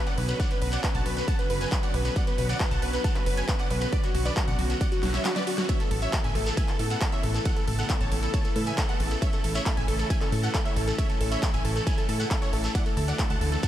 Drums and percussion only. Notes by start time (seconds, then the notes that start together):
0.06 closed hi-hat, shekere
0.18 open hi-hat
0.28 closed hi-hat, shekere
0.40 kick, closed hi-hat, shekere
0.51 closed hi-hat, shekere
0.62 open hi-hat
0.72 closed hi-hat, shekere
0.84 kick, clap, closed hi-hat, shekere
0.94 closed hi-hat, shekere
1.06 open hi-hat
1.17 closed hi-hat, shekere
1.28 kick, closed hi-hat, shekere
1.39 closed hi-hat, shekere
1.50 open hi-hat
1.61 closed hi-hat, shekere
1.71 kick, clap, closed hi-hat, shekere
1.83 closed hi-hat, shekere
1.94 open hi-hat
2.05 closed hi-hat, shekere
2.16 kick, closed hi-hat, shekere
2.27 closed hi-hat, shekere
2.38 open hi-hat
2.49 closed hi-hat, shekere
2.60 kick, clap, closed hi-hat, shekere
2.71 closed hi-hat, shekere
2.82 open hi-hat
2.93 closed hi-hat, shekere
3.04 kick, closed hi-hat, shekere
3.15 clap, closed hi-hat, shekere
3.26 open hi-hat
3.37 closed hi-hat, shekere
3.48 kick, clap, closed hi-hat, shekere
3.58 closed hi-hat, shekere
3.70 open hi-hat
3.81 closed hi-hat, shekere
3.93 kick, closed hi-hat, shekere
4.04 closed hi-hat, shekere
4.15 open hi-hat
4.25 closed hi-hat, shekere
4.36 kick, clap, closed hi-hat, shekere
4.48 closed hi-hat, shekere
4.59 open hi-hat
4.70 closed hi-hat, shekere
4.80 kick, closed hi-hat, shekere
4.92 closed hi-hat, shekere
5.03 snare, open hi-hat
5.14 snare, closed hi-hat, shekere
5.25 snare, clap, closed hi-hat, shekere
5.36 snare, closed hi-hat, shekere
5.47 open hi-hat
5.58 snare, closed hi-hat, shekere
5.69 kick, closed hi-hat, ride, shekere
5.80 closed hi-hat, shekere
5.91 open hi-hat
6.02 closed hi-hat, shekere
6.13 kick, clap, closed hi-hat, ride, shekere
6.24 closed hi-hat, shekere
6.35 open hi-hat
6.46 closed hi-hat, shekere
6.57 kick, closed hi-hat, ride, shekere
6.68 clap, closed hi-hat, shekere
6.79 open hi-hat
6.90 closed hi-hat, shekere
7.01 kick, clap, closed hi-hat, ride, shekere
7.12 closed hi-hat, shekere
7.23 open hi-hat
7.34 closed hi-hat, shekere
7.45 kick, closed hi-hat, ride, shekere
7.56 closed hi-hat, shekere
7.68 open hi-hat
7.79 closed hi-hat, shekere
7.89 kick, clap, closed hi-hat, ride, shekere
8.01 closed hi-hat, shekere
8.12 open hi-hat
8.23 closed hi-hat, shekere
8.34 kick, closed hi-hat, ride, shekere
8.44 closed hi-hat, shekere
8.56 open hi-hat
8.66 closed hi-hat, shekere
8.78 kick, clap, closed hi-hat, ride, shekere
8.89 closed hi-hat, shekere
9.00 open hi-hat
9.11 closed hi-hat, shekere
9.21 kick, closed hi-hat, ride, shekere
9.33 closed hi-hat, shekere
9.44 open hi-hat
9.55 closed hi-hat, shekere
9.66 kick, clap, closed hi-hat, ride, shekere
9.77 closed hi-hat, shekere
9.88 open hi-hat
9.99 closed hi-hat, shekere
10.10 kick, closed hi-hat, ride, shekere
10.21 clap, closed hi-hat, shekere
10.32 open hi-hat
10.43 closed hi-hat, shekere
10.54 kick, clap, closed hi-hat, ride, shekere
10.65 closed hi-hat, shekere
10.76 open hi-hat
10.88 closed hi-hat, shekere
10.98 kick, closed hi-hat, ride, shekere
11.10 closed hi-hat, shekere
11.21 open hi-hat
11.31 closed hi-hat, shekere
11.43 kick, clap, closed hi-hat, ride, shekere
11.54 closed hi-hat, shekere
11.65 open hi-hat
11.76 closed hi-hat, shekere
11.87 kick, closed hi-hat, ride, shekere
11.98 closed hi-hat, shekere
12.09 open hi-hat
12.20 closed hi-hat, shekere
12.31 kick, clap, closed hi-hat, ride
12.42 closed hi-hat, shekere
12.53 open hi-hat
12.64 closed hi-hat, shekere
12.74 kick, closed hi-hat, ride, shekere
12.86 closed hi-hat, shekere
12.97 open hi-hat
13.08 closed hi-hat, shekere
13.19 kick, clap, closed hi-hat, ride, shekere
13.30 closed hi-hat, shekere
13.41 open hi-hat
13.52 closed hi-hat, shekere
13.63 kick, closed hi-hat, ride, shekere